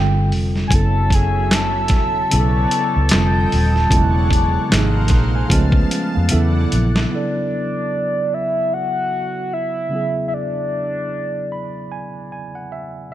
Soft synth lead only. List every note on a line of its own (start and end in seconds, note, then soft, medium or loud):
0.00 0.32 G5 medium
0.67 0.75 G#5 medium
0.74 1.16 A5 loud
1.14 1.55 G#5 loud
1.54 6.32 A5 loud
7.15 8.36 D5 medium
8.34 8.75 E5 medium
8.74 9.55 F#5 loud
9.53 10.26 E5 medium
10.28 10.35 E5 medium
10.34 11.92 D5 medium